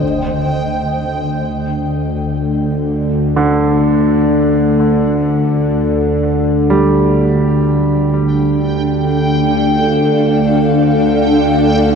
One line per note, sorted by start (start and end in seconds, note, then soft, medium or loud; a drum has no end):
0.01 11.95 D2 medium
0.01 11.95 D3 medium
0.01 impact medium
3.36 9.08 D3 medium
6.70 11.95 G3 medium
7.62 11.95 D4 medium
7.62 11.95 G5 medium
8.70 11.95 A4 medium
8.80 11.95 D5 medium
9.26 11.95 F5 medium